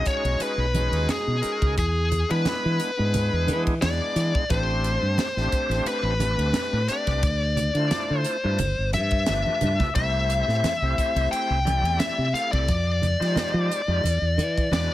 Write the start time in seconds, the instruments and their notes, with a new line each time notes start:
Already playing: tonewheel organ G#3 C#4 D#4 F#4 G#4
0.05 lead electric guitar C#5, muted fingered electric bass stroke, kick, hi-hat pedal, ride
0.24 fingered electric bass B1, ride
0.39 lead electric guitar B4, hi-hat pedal, ride, muted conga
0.58 fingered electric bass B1
0.74 tonewheel organ G#3 C#4 D#4 F#4 G#4, hi-hat pedal, ride, muted conga, high conga
0.92 fingered electric bass D#2, ride
1.09 lead electric guitar G#4, snare, hi-hat pedal, ride, high conga
1.27 fingered electric bass B2
1.42 tonewheel organ G#3 C#4 D#4 F#4 A#4, muted fingered electric bass stroke, hi-hat pedal, ride
1.62 fingered electric bass C#2, kick, ride
1.77 fingered electric bass E2, lead electric guitar G#4, kick, hi-hat pedal, ride, muted conga
2.12 hi-hat pedal, ride, low conga
2.29 fingered electric bass E3, tonewheel organ G#3 B3 D4 E4 B4, lead electric guitar B4, ride
2.45 snare, hi-hat pedal, ride, muted conga, high conga
2.65 fingered electric bass E3
2.80 hi-hat pedal, ride
2.97 fingered electric bass G#2, tonewheel organ G#3 B3 D4 E4 G#4
3.14 hi-hat pedal, ride, muted conga, low conga
3.33 fingered electric bass E2
3.47 fingered electric bass E3, hi-hat pedal, ride, muted conga, high conga
3.67 kick, ride
3.81 fingered electric bass E2, tonewheel organ G#3 B3 D4 E4 G#4, lead electric guitar D5, snare, hi-hat pedal, ride, high conga
4.16 fingered electric bass E3, snare, hi-hat pedal, ride
4.35 kick
4.49 fingered electric bass A1, tonewheel organ A3 C4 D4 G4 C5, lead electric guitar C5, kick, hi-hat pedal, ride, muted conga
4.84 hi-hat pedal, ride
5.02 fingered electric bass G2
5.18 muted fingered electric bass stroke, snare, hi-hat pedal, ride, muted conga, high conga
5.37 fingered electric bass A1, tonewheel organ A3 C4 D4 G4 C5, snare
5.52 muted fingered electric bass stroke, kick, hi-hat pedal, ride
5.69 fingered electric bass A1, snare, ride
5.85 lead electric guitar B4, muted fingered electric bass stroke, hi-hat pedal, ride, muted conga
6.03 fingered electric bass A1
6.20 tonewheel organ A3 C4 D4 G4 B4, hi-hat pedal, ride, muted conga, high conga
6.38 fingered electric bass D2, ride
6.53 snare, hi-hat pedal, ride, high conga
6.73 fingered electric bass A2
6.88 tonewheel organ A3 C4 D4 G4 B4, lead electric guitar D5, muted fingered electric bass stroke, hi-hat pedal, ride
7.07 fingered electric bass C2, kick, snare, ride
7.21 fingered electric bass D2, kick, hi-hat pedal, ride, muted conga
7.57 hi-hat pedal, ride, low conga
7.74 fingered electric bass D3, tonewheel organ A3 D4 E4 F4 C5, ride
7.91 snare, hi-hat pedal, ride, muted conga, high conga
8.10 fingered electric bass D3
8.20 lead electric guitar C5
8.24 hi-hat pedal, ride
8.44 fingered electric bass G2, tonewheel organ A3 D4 E4 F4 B4
8.59 fingered electric bass G1, hi-hat pedal, ride, muted conga, low conga
8.79 fingered electric bass G1
8.93 fingered electric bass G2, lead electric guitar E5, hi-hat pedal, ride, muted conga, high conga
9.11 kick, ride
9.26 fingered electric bass G1, tonewheel organ A3 D4 F4 G4 B4, snare, hi-hat pedal, ride, high conga
9.46 high conga
9.61 fingered electric bass G2, hi-hat pedal, ride, low conga
9.80 muted fingered electric bass stroke, kick, snare, low conga
9.94 fingered electric bass C2, tonewheel organ A3 C4 E4 G4 C5, lead electric guitar E5, kick, hi-hat pedal, ride, muted conga
10.30 hi-hat pedal, ride
10.48 fingered electric bass A2, snare
10.63 muted fingered electric bass stroke, snare, hi-hat pedal, ride, muted conga, high conga
10.82 fingered electric bass C2, tonewheel organ A3 C4 E4 G4 C5
10.98 muted fingered electric bass stroke, kick, hi-hat pedal, ride
11.16 fingered electric bass C2, ride
11.31 lead electric guitar G5, hi-hat pedal, ride, muted conga
11.50 fingered electric bass C2
11.65 tonewheel organ A3 C4 E4 G4 D5, hi-hat pedal, ride, muted conga, high conga
11.82 fingered electric bass E2, ride
11.99 lead electric guitar E5, snare, hi-hat pedal, ride, high conga
12.18 fingered electric bass C3
12.33 tonewheel organ A3 C4 E4 G4 A4, lead electric guitar F5, muted fingered electric bass stroke, snare, hi-hat pedal, ride
12.52 fingered electric bass C2, lead electric guitar D5, kick, ride
12.68 fingered electric bass F2, kick, hi-hat pedal, ride, muted conga
13.02 hi-hat pedal, ride, low conga
13.20 fingered electric bass F3, tonewheel organ G#3 D#4 F4 G4 C5, snare, ride
13.36 snare, hi-hat pedal, ride, muted conga, high conga
13.54 fingered electric bass F3
13.71 hi-hat pedal, ride
13.87 fingered electric bass F2, tonewheel organ G#3 D#4 F4 G4 D5
14.04 fingered electric bass E2, hi-hat pedal, ride, muted conga, low conga
14.21 fingered electric bass E2
14.37 fingered electric bass E3, hi-hat pedal, ride, muted conga, high conga
14.58 kick, ride
14.71 fingered electric bass E2, tonewheel organ G#3 D4 E4 F#4 B4, lead electric guitar D5, snare, hi-hat pedal, ride, high conga